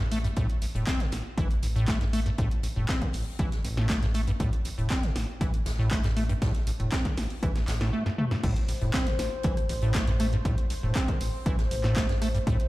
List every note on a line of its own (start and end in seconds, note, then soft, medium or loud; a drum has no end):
0.00 0.32 A1 loud
0.12 0.19 A3 loud
0.12 closed hi-hat medium
0.12 open hi-hat loud
0.24 0.28 G2 loud
0.24 closed hi-hat soft
0.36 0.46 A1 medium
0.36 0.47 A2 loud
0.36 kick loud
0.36 closed hi-hat medium
0.50 closed hi-hat soft
0.61 0.66 A1 medium
0.61 closed hi-hat medium
0.61 open hi-hat loud
0.75 0.84 E1 medium
0.75 0.85 A2 medium
0.75 closed hi-hat soft
0.87 1.02 C4 loud
0.87 kick loud
0.87 snare loud
0.87 clap loud
0.87 closed hi-hat medium
0.99 1.07 B2 loud
0.99 snare soft
0.99 closed hi-hat soft
1.12 1.22 A1 medium
1.12 snare medium
1.12 closed hi-hat medium
1.12 open hi-hat loud
1.38 1.57 A1 medium
1.38 1.48 E3 loud
1.38 kick loud
1.38 closed hi-hat medium
1.51 closed hi-hat soft
1.62 1.96 A1 medium
1.62 1.67 A1 medium
1.62 closed hi-hat medium
1.62 open hi-hat loud
1.76 1.86 A2 loud
1.76 closed hi-hat soft
1.88 1.99 A3 loud
1.88 kick loud
1.88 snare loud
1.88 clap loud
1.88 closed hi-hat medium
2.01 2.33 A1 medium
2.01 2.05 G2 loud
2.01 snare soft
2.01 closed hi-hat soft
2.13 2.20 A3 loud
2.13 closed hi-hat medium
2.13 open hi-hat loud
2.26 2.30 G2 loud
2.26 closed hi-hat soft
2.38 2.48 A1 loud
2.38 2.49 A2 loud
2.38 kick loud
2.38 closed hi-hat medium
2.51 closed hi-hat soft
2.63 2.68 A1 medium
2.63 closed hi-hat medium
2.63 open hi-hat medium
2.76 2.86 E1 medium
2.76 2.87 A2 medium
2.89 3.03 C4 loud
2.89 kick loud
2.89 snare loud
2.89 clap loud
2.89 closed hi-hat medium
3.01 3.08 B2 loud
3.01 kick medium
3.01 closed hi-hat medium
3.13 3.24 A1 medium
3.13 open hi-hat medium
3.13 open hi-hat loud
3.39 3.58 A1 medium
3.39 3.50 E3 loud
3.39 kick loud
3.39 closed hi-hat medium
3.52 snare soft
3.52 closed hi-hat medium
3.64 3.69 A1 medium
3.64 3.97 A1 medium
3.64 closed hi-hat medium
3.64 open hi-hat loud
3.77 3.87 A2 loud
3.77 snare medium
3.89 4.00 A3 loud
3.89 kick loud
3.89 snare loud
3.89 clap loud
3.89 closed hi-hat medium
4.02 4.35 A1 medium
4.02 4.06 G2 loud
4.02 snare soft
4.02 closed hi-hat medium
4.14 4.22 A3 loud
4.14 closed hi-hat medium
4.14 open hi-hat loud
4.27 4.32 G2 loud
4.27 closed hi-hat soft
4.40 4.50 A1 loud
4.40 4.51 A2 loud
4.40 kick loud
4.40 closed hi-hat medium
4.53 closed hi-hat medium
4.65 4.69 A1 medium
4.65 closed hi-hat medium
4.65 open hi-hat loud
4.78 4.87 E1 medium
4.78 4.88 A2 medium
4.78 closed hi-hat soft
4.90 5.05 C4 loud
4.90 kick loud
4.90 snare loud
4.90 clap loud
4.90 closed hi-hat medium
5.03 5.10 B2 loud
5.03 snare soft
5.03 closed hi-hat medium
5.16 5.25 A1 medium
5.16 snare medium
5.16 closed hi-hat medium
5.16 open hi-hat loud
5.41 5.60 A1 medium
5.41 5.51 E3 loud
5.41 kick loud
5.41 closed hi-hat medium
5.54 closed hi-hat medium
5.54 closed hi-hat soft
5.66 5.99 A1 medium
5.66 5.70 A1 medium
5.66 snare loud
5.66 closed hi-hat medium
5.66 open hi-hat loud
5.79 5.89 A2 loud
5.79 snare soft
5.91 6.02 A3 loud
5.91 kick loud
5.91 clap loud
5.91 closed hi-hat medium
6.03 6.37 A1 medium
6.03 6.08 G2 loud
6.03 snare loud
6.03 closed hi-hat medium
6.16 6.24 A3 loud
6.16 snare soft
6.16 open hi-hat loud
6.29 6.33 G2 loud
6.29 closed hi-hat soft
6.29 closed hi-hat medium
6.42 6.51 A1 loud
6.42 6.52 A2 loud
6.42 kick loud
6.42 snare loud
6.42 closed hi-hat medium
6.55 snare soft
6.55 closed hi-hat medium
6.67 6.71 A1 medium
6.67 closed hi-hat medium
6.67 open hi-hat loud
6.80 6.89 E1 medium
6.80 6.90 A2 medium
6.80 closed hi-hat soft
6.92 7.06 C4 loud
6.92 kick loud
6.92 snare loud
6.92 clap loud
6.92 closed hi-hat medium
7.05 7.12 B2 loud
7.05 kick medium
7.05 snare soft
7.05 closed hi-hat medium
7.17 7.27 A1 medium
7.17 snare medium
7.17 open hi-hat medium
7.17 open hi-hat loud
7.30 closed hi-hat soft
7.43 7.62 A1 medium
7.43 7.53 E3 loud
7.43 kick loud
7.43 closed hi-hat loud
7.43 closed hi-hat medium
7.56 snare medium
7.56 snare soft
7.56 closed hi-hat medium
7.68 7.93 A1 medium
7.68 7.72 A1 medium
7.68 snare loud
7.68 clap medium
7.68 closed hi-hat medium
7.68 open hi-hat loud
7.81 7.91 A2 loud
7.81 snare soft
7.81 snare medium
7.81 closed hi-hat soft
7.93 8.04 A3 loud
8.06 8.10 G2 loud
8.06 snare soft
8.18 8.25 A3 loud
8.18 mid tom medium
8.31 8.35 G2 loud
8.31 snare medium
8.43 8.53 A1 loud
8.43 8.54 A2 loud
8.43 12.68 C5 medium
8.43 kick loud
8.43 closed hi-hat medium
8.43 crash loud
8.56 closed hi-hat medium
8.68 8.73 A1 medium
8.68 closed hi-hat medium
8.68 open hi-hat loud
8.81 8.91 E1 medium
8.81 8.92 A2 medium
8.81 closed hi-hat soft
8.94 9.08 C4 loud
8.94 kick loud
8.94 cross-stick medium
8.94 snare loud
8.94 clap loud
8.94 closed hi-hat medium
9.07 9.14 B2 loud
9.07 snare soft
9.07 closed hi-hat medium
9.19 9.29 A1 medium
9.19 snare medium
9.19 closed hi-hat medium
9.19 open hi-hat loud
9.43 9.63 A1 medium
9.43 9.55 E3 loud
9.43 kick loud
9.43 closed hi-hat medium
9.57 cross-stick soft
9.57 closed hi-hat medium
9.57 closed hi-hat soft
9.69 10.02 A1 medium
9.69 9.74 A1 medium
9.69 closed hi-hat medium
9.69 open hi-hat loud
9.81 9.93 A2 loud
9.81 closed hi-hat soft
9.94 10.05 A3 loud
9.94 kick loud
9.94 snare loud
9.94 clap loud
9.94 closed hi-hat loud
9.94 closed hi-hat medium
10.07 10.40 A1 medium
10.07 10.12 G2 loud
10.07 snare soft
10.07 closed hi-hat medium
10.20 10.27 A3 loud
10.20 cross-stick medium
10.20 closed hi-hat medium
10.20 open hi-hat loud
10.33 10.37 G2 loud
10.33 closed hi-hat soft
10.45 10.55 A1 loud
10.45 10.56 A2 loud
10.45 kick loud
10.45 closed hi-hat medium
10.58 closed hi-hat medium
10.70 10.75 A1 medium
10.70 closed hi-hat medium
10.70 open hi-hat loud
10.83 10.92 E1 medium
10.83 10.93 A2 medium
10.95 11.10 C4 loud
10.95 kick loud
10.95 cross-stick medium
10.95 snare loud
10.95 clap loud
10.95 closed hi-hat medium
11.08 11.15 B2 loud
11.08 kick medium
11.08 closed hi-hat medium
11.20 11.30 A1 medium
11.20 open hi-hat medium
11.20 open hi-hat loud
11.46 11.65 A1 medium
11.46 11.57 E3 loud
11.46 kick loud
11.46 closed hi-hat medium
11.58 cross-stick soft
11.58 snare soft
11.58 closed hi-hat medium
11.71 12.04 A1 medium
11.71 11.75 A1 medium
11.71 closed hi-hat medium
11.71 open hi-hat loud
11.84 11.94 A2 loud
11.84 snare medium
11.84 clap soft
11.96 12.07 A3 loud
11.96 kick loud
11.96 snare loud
11.96 clap loud
11.96 closed hi-hat medium
11.96 closed hi-hat loud
12.09 12.42 A1 medium
12.09 12.13 G2 loud
12.09 snare medium
12.09 closed hi-hat medium
12.22 12.29 A3 loud
12.22 cross-stick medium
12.22 closed hi-hat medium
12.22 open hi-hat loud
12.34 12.39 G2 loud
12.34 closed hi-hat soft
12.47 12.56 A1 loud
12.47 12.57 A2 loud
12.47 kick loud
12.47 closed hi-hat medium
12.60 closed hi-hat medium